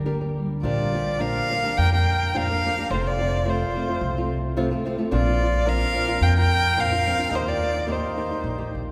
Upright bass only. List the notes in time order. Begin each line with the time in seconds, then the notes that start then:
0.63 A#1
1.78 F2
2.91 F1
4.01 C2
5.12 A#1
6.21 F2
7.31 D#2
8.44 A#1
8.75 A#1